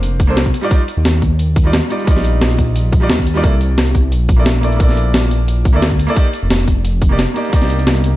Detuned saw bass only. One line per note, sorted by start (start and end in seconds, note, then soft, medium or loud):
0.00 0.27 F1 medium
0.29 0.53 C2 medium
0.97 1.81 D#2 medium
2.16 3.08 A#1 medium
3.09 3.42 D#2 loud
3.44 4.13 C2 medium
4.12 5.73 A#1 loud
5.74 6.07 D2 medium
6.43 7.26 F1 medium
7.62 8.16 C2 medium